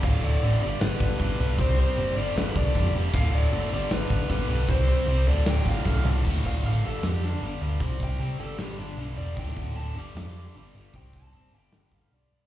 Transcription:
0.03 picked electric bass D1, overdriven electric guitar D2 A2 D3, tonewheel organ D4 A4 E5, lead electric guitar F5, kick, crash
0.23 picked electric bass D1, lead electric guitar D5
0.42 picked electric bass A1, overdriven electric guitar D2 A2 D3, open hi-hat
0.61 picked electric bass G1, overdriven electric guitar G2 D3 G3, tonewheel organ G3, lead electric guitar D5
0.80 picked electric bass G1, overdriven electric guitar G2 D3 G3, lead electric guitar B4, snare, open hi-hat
1.00 picked electric bass G1, kick
1.19 picked electric bass G1, overdriven electric guitar G2 D3 G3, kick, open hi-hat
1.39 picked electric bass B1, overdriven electric guitar G2 D3 G3
1.58 picked electric bass C2, overdriven electric guitar C3 G3 C4, tonewheel organ C4 G4 D5, lead electric guitar C5, kick, open hi-hat
1.80 lead electric guitar C5
1.98 picked electric bass F#1, overdriven electric guitar C3 G3 C4, open hi-hat
2.16 picked electric bass G1, overdriven electric guitar G2 D3 G3, tonewheel organ G3 D4 A4, lead electric guitar D5
2.36 picked electric bass G1, overdriven electric guitar G2 D3 G3, lead electric guitar B4, snare, open hi-hat
2.56 picked electric bass C2, lead electric guitar D5, kick
2.67 snare
2.75 picked electric bass F2, overdriven electric guitar G2 D3 G3, kick, open hi-hat
2.94 picked electric bass F1, overdriven electric guitar G2 D3 G3
3.13 picked electric bass D1, overdriven electric guitar D2 A2 D3, tonewheel organ E5, lead electric guitar F5, kick, crash
3.33 picked electric bass D1, lead electric guitar D5
3.52 picked electric bass F#1, overdriven electric guitar D2 A2 D3, open hi-hat
3.71 picked electric bass G1, overdriven electric guitar G2 D3 G3, tonewheel organ G3 D4
3.75 lead electric guitar D5
3.90 picked electric bass G1, overdriven electric guitar G2 D3 G3, lead electric guitar B4, snare, open hi-hat
4.10 picked electric bass G1, kick
4.29 picked electric bass G1, overdriven electric guitar G2 D3 G3, lead electric guitar B4, kick, open hi-hat
4.48 picked electric bass B1, overdriven electric guitar G2 D3 G3
4.67 picked electric bass C2, overdriven electric guitar C3 G3 C4, tonewheel organ C4 G4 D5, lead electric guitar C5, kick, open hi-hat
4.89 lead electric guitar C5
5.07 picked electric bass C2, overdriven electric guitar C3 G3 C4, open hi-hat
5.27 picked electric bass D1, overdriven electric guitar D2 A2 D3, tonewheel organ D4 A4 F5, lead electric guitar D5
5.46 picked electric bass D1, overdriven electric guitar D2 A2 D3, snare, open hi-hat
5.50 lead electric guitar G5
5.66 picked electric bass G1, lead electric guitar F5, kick
5.85 picked electric bass C2, overdriven electric guitar D2 A2 D3, kick, snare
6.05 picked electric bass C2, overdriven electric guitar D2 A2 D3, floor tom
6.25 picked electric bass D1, overdriven electric guitar D2 A2 D3, kick, crash
6.44 picked electric bass D1, lead electric guitar F5, kick
6.64 picked electric bass A1, overdriven electric guitar D2 A2 D3, lead electric guitar F5, open hi-hat
6.83 picked electric bass G1, overdriven electric guitar G2 D3 G3, lead electric guitar A4
7.03 picked electric bass F2, overdriven electric guitar G2 D3 G3, snare, open hi-hat
7.07 lead electric guitar G4
7.25 lead electric guitar D4
7.41 picked electric bass G1, overdriven electric guitar G2 D3 G3, open hi-hat
7.60 picked electric bass D2, overdriven electric guitar G2 D3 G3
7.80 picked electric bass C2, overdriven electric guitar C3 G3 C4, kick, open hi-hat
8.00 picked electric bass C2, kick
8.04 lead electric guitar G5
8.19 picked electric bass C3, overdriven electric guitar C3 G3 C4, lead electric guitar G5, open hi-hat
8.38 picked electric bass G1, overdriven electric guitar G2 D3 G3, lead electric guitar A4
8.58 picked electric bass G1, overdriven electric guitar G2 D3 G3, lead electric guitar G4, snare, open hi-hat
8.78 picked electric bass G1, lead electric guitar D4
8.97 picked electric bass B1, overdriven electric guitar G2 D3 G3, open hi-hat
9.17 picked electric bass E1, overdriven electric guitar G2 D3 G3, lead electric guitar D5
9.37 picked electric bass D1, overdriven electric guitar D2 A2 D3, lead electric guitar G5, kick, open hi-hat
9.48 snare
9.56 picked electric bass D1, kick
9.75 picked electric bass D1, overdriven electric guitar D2 A2 D3, lead electric guitar A5, open hi-hat
9.95 picked electric bass G1, overdriven electric guitar G2 D3 G3, lead electric guitar D6
10.15 picked electric bass F2, overdriven electric guitar G2 D3 G3, lead electric guitar D6, snare, open hi-hat
10.55 picked electric bass G1, overdriven electric guitar G2 D3 G3, open hi-hat
10.74 picked electric bass G1, overdriven electric guitar G2 D3 G3
10.93 picked electric bass C2, overdriven electric guitar C3 G3 C4, lead electric guitar G5, kick, open hi-hat
11.13 picked electric bass C2, kick
11.17 lead electric guitar A5
11.33 picked electric bass F#1, overdriven electric guitar C3 G3 C4, open hi-hat
11.53 picked electric bass G1, overdriven electric guitar G2 D3 G3
11.58 lead electric guitar G5
11.72 picked electric bass G1, overdriven electric guitar G2 D3 G3, lead electric guitar G5, snare, open hi-hat
11.91 picked electric bass G1, lead electric guitar F5, kick
12.11 picked electric bass B1, overdriven electric guitar G2 D3 G3, lead electric guitar D5, open hi-hat
12.31 picked electric bass G2, overdriven electric guitar G2 D3 G3

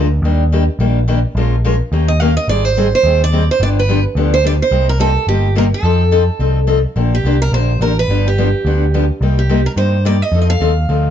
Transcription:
Already playing: picked electric bass D2
0.22 picked electric bass D#2, steel-string acoustic guitar D#3 G3 A#3 D4 G4
0.52 steel-string acoustic guitar D#3 G3 A#3 D4 G4
0.79 picked electric bass A#1, steel-string acoustic guitar D#3 G3 A#3 D4 G4
1.08 steel-string acoustic guitar D#3 G3 A#3 D4 G4
1.35 picked electric bass A#1, steel-string acoustic guitar F3 G#3 C#4 F4 A#4
1.65 steel-string acoustic guitar F3 G#3 C#4 F4 A#4
1.92 picked electric bass D#2, steel-string acoustic guitar D#3 A#3 C#4 G4 A#4
2.08 steel-string acoustic guitar D#5
2.20 steel-string acoustic guitar D#3 A#3 C#4 G4 A#4 F5
2.37 steel-string acoustic guitar D#5
2.48 picked electric bass G#1, steel-string acoustic guitar D#3 G3 C4 D#4 G#4 D5
2.65 steel-string acoustic guitar C5
2.77 steel-string acoustic guitar D#3 G3 C4 D#4 G#4
2.95 steel-string acoustic guitar C5
3.03 picked electric bass D#2, steel-string acoustic guitar D#3 G3 C4 D#4 G#4
3.24 steel-string acoustic guitar D5
3.32 steel-string acoustic guitar D#3 G3 C4 D#4 G#4
3.51 steel-string acoustic guitar C5
3.60 picked electric bass G1, steel-string acoustic guitar D3 F3 B3 D4 G4 D5
3.79 steel-string acoustic guitar B4
3.89 steel-string acoustic guitar D3 F3 B3 D4 G4
4.15 picked electric bass D2, steel-string acoustic guitar D3 F3 B3 D4 G4
4.34 steel-string acoustic guitar C5
4.44 steel-string acoustic guitar D3 F3 B3 D4 G4 D5
4.62 steel-string acoustic guitar C5
4.71 picked electric bass C2, steel-string acoustic guitar C3 G3 A#3 D#4 G4
4.89 steel-string acoustic guitar A#4
4.99 steel-string acoustic guitar C3 G3 A#3 D#4 G4 A4
5.27 picked electric bass G1, steel-string acoustic guitar C3 G3 A#3 D#4 G4
5.55 steel-string acoustic guitar C3 G3 A#3 D#4 G4 A#4
5.74 steel-string acoustic guitar A4
5.83 picked electric bass F2, steel-string acoustic guitar F3 C4 D#4 A4
6.11 steel-string acoustic guitar F3 C4 D#4 A4
6.39 picked electric bass C2, steel-string acoustic guitar F3 C4 D#4 A4
6.67 steel-string acoustic guitar F3 C4 D#4 A4
6.96 picked electric bass A#1, steel-string acoustic guitar D3 F3 A#3 D4 G4
7.15 steel-string acoustic guitar G4
7.24 picked electric bass C2, steel-string acoustic guitar D3 F3 A#3 D4 G4
7.42 steel-string acoustic guitar A#4
7.52 picked electric bass A#1, steel-string acoustic guitar D3 F3 A#3 D4 G4 C5
7.79 picked electric bass A1, steel-string acoustic guitar D3 F3 A#3 D4 G4 A#4
7.99 steel-string acoustic guitar B4
8.08 picked electric bass G1, steel-string acoustic guitar D3 F3 B3 D4 G4
8.28 steel-string acoustic guitar G4
8.38 steel-string acoustic guitar D3 F3 B3 D4 G4
8.65 picked electric bass D2, steel-string acoustic guitar D3 F3 B3 D4 G4
8.94 steel-string acoustic guitar D3 F3 B3 D4 G4
9.21 picked electric bass C2, steel-string acoustic guitar C3 G3 A#3 D#4 G4
9.39 steel-string acoustic guitar G4
9.49 steel-string acoustic guitar C3 G3 A#3 D#4 G4
9.66 steel-string acoustic guitar A#4
9.76 picked electric bass G2, steel-string acoustic guitar C3 G3 A#3 D#4 G4 C5
10.05 steel-string acoustic guitar C3 G3 A#3 D#4 G4 D5
10.22 steel-string acoustic guitar D#5
10.32 picked electric bass F2, steel-string acoustic guitar F3 C4 D#4 A4
10.41 steel-string acoustic guitar D#5
10.50 steel-string acoustic guitar F5
10.60 picked electric bass D#2, steel-string acoustic guitar F3 C4 D#4 A4
10.89 picked electric bass D2, steel-string acoustic guitar F3 C4 D#4 A4

